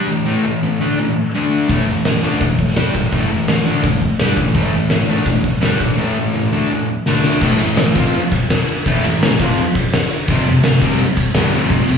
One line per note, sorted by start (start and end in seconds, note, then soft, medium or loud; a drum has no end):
0.08 0.22 A2 medium
0.08 0.22 E3 medium
0.25 0.43 A2 loud
0.25 0.43 E3 medium
0.25 0.44 A3 loud
0.44 0.58 A2 medium
0.44 0.59 E3 medium
0.63 0.77 A2 medium
0.63 0.77 E3 medium
0.81 0.98 D3 medium
0.81 0.98 A3 medium
0.81 0.98 D4 loud
0.99 1.13 A2 medium
0.99 1.13 E3 medium
1.34 1.68 D3 medium
1.34 1.69 A3 loud
1.34 1.69 D4 medium
1.69 1.85 A2 medium
1.69 1.86 E3 medium
1.69 1.87 A3 medium
1.69 kick loud
1.69 open hi-hat medium
1.87 2.01 A2 medium
1.87 2.02 E3 medium
2.05 2.20 A2 medium
2.05 2.20 E3 medium
2.05 snare loud
2.05 open hi-hat medium
2.23 2.41 D3 medium
2.23 2.41 A3 medium
2.23 2.41 D4 medium
2.40 2.56 A2 medium
2.40 2.56 E3 medium
2.40 kick loud
2.40 open hi-hat medium
2.59 kick medium
2.67 snare soft
2.76 2.94 G3 medium
2.76 2.94 D4 loud
2.76 2.95 G4 medium
2.76 snare loud
2.76 open hi-hat medium
2.93 3.09 A2 medium
2.93 3.09 E3 medium
2.93 kick medium
3.11 3.29 A2 medium
3.11 3.29 E3 medium
3.11 3.30 A3 medium
3.11 kick loud
3.11 open hi-hat medium
3.30 3.45 A2 medium
3.30 3.45 E3 medium
3.48 3.63 A2 medium
3.48 3.63 E3 medium
3.48 snare loud
3.48 open hi-hat medium
3.66 3.84 D3 medium
3.66 3.84 A3 medium
3.66 3.84 D4 medium
3.83 3.99 A2 medium
3.83 3.99 E3 medium
3.83 kick loud
3.83 open hi-hat medium
4.02 kick medium
4.19 4.38 G3 medium
4.19 4.38 D4 medium
4.19 4.38 G4 loud
4.19 snare loud
4.19 open hi-hat medium
4.37 4.53 A2 medium
4.37 4.53 E3 medium
4.37 kick medium
4.54 4.71 A2 medium
4.54 4.71 E3 loud
4.54 4.74 A3 loud
4.54 kick loud
4.54 open hi-hat medium
4.72 4.88 A2 medium
4.72 4.88 E3 medium
4.90 5.06 A2 medium
4.90 5.06 E3 medium
4.90 snare loud
4.90 open hi-hat medium
5.08 5.26 D3 medium
5.08 5.26 A3 loud
5.08 5.27 D4 loud
5.26 5.42 A2 medium
5.26 5.42 E3 medium
5.26 kick loud
5.26 open hi-hat medium
5.44 kick medium
5.61 5.79 G3 medium
5.61 5.81 D4 loud
5.61 5.81 G4 loud
5.61 snare loud
5.61 open hi-hat medium
5.79 5.95 A2 medium
5.79 5.95 E3 medium
5.79 kick medium
5.97 6.13 A2 loud
5.97 6.13 E3 medium
5.97 6.17 A3 medium
6.14 6.31 A2 medium
6.14 6.31 E3 medium
6.33 6.49 A2 medium
6.33 6.49 E3 medium
6.52 6.70 D3 medium
6.52 6.70 A3 medium
6.52 6.71 D4 loud
6.70 6.85 A2 medium
6.70 6.86 E3 medium
7.06 7.41 D3 medium
7.06 7.42 A3 loud
7.06 7.43 D4 medium
7.06 snare medium
7.24 snare medium
7.41 7.59 A2 loud
7.41 7.59 E3 loud
7.41 7.61 A3 loud
7.41 kick loud
7.41 crash loud
7.59 7.75 A2 medium
7.59 7.75 E3 medium
7.59 ride medium
7.77 7.93 A2 medium
7.77 7.93 E3 medium
7.77 snare loud
7.77 ride loud
7.95 8.13 F3 medium
7.95 8.14 C4 loud
7.95 8.14 F4 loud
7.95 kick medium
7.95 ride medium
8.14 ride loud
8.32 kick medium
8.32 ride medium
8.50 snare loud
8.50 ride loud
8.69 ride medium
8.86 9.03 A2 medium
8.86 9.04 E3 loud
8.86 9.04 A3 loud
8.86 kick loud
8.86 ride loud
9.05 9.19 A2 medium
9.05 9.19 E3 medium
9.05 ride medium
9.23 9.37 A2 medium
9.23 9.37 E3 medium
9.23 snare loud
9.23 ride loud
9.40 9.57 F3 medium
9.40 9.58 C4 medium
9.40 9.58 F4 loud
9.40 kick medium
9.40 ride medium
9.58 ride loud
9.75 kick medium
9.75 ride medium
9.93 snare loud
9.93 ride loud
10.11 ride medium
10.28 10.46 F2 loud
10.28 10.47 C3 loud
10.28 10.47 F3 loud
10.28 kick loud
10.28 ride loud
10.46 10.62 F2 medium
10.46 10.62 C3 medium
10.46 ride medium
10.64 10.79 F2 medium
10.64 10.80 C3 medium
10.64 snare loud
10.64 ride loud
10.81 10.99 C3 loud
10.81 11.00 G3 loud
10.81 11.00 C4 loud
10.81 kick medium
10.81 ride medium
10.99 ride loud
11.17 kick medium
11.17 ride medium
11.34 11.53 G2 loud
11.34 11.53 D3 medium
11.34 11.53 G3 loud
11.34 snare loud
11.34 ride loud
11.53 11.69 F2 medium
11.53 11.69 C3 medium
11.53 11.70 F3 loud
11.53 ride medium
11.70 11.88 F2 medium
11.70 11.88 C3 medium
11.70 11.88 F3 loud
11.70 kick loud
11.70 ride loud
11.89 11.98 F2 medium
11.89 11.98 C3 medium
11.89 ride medium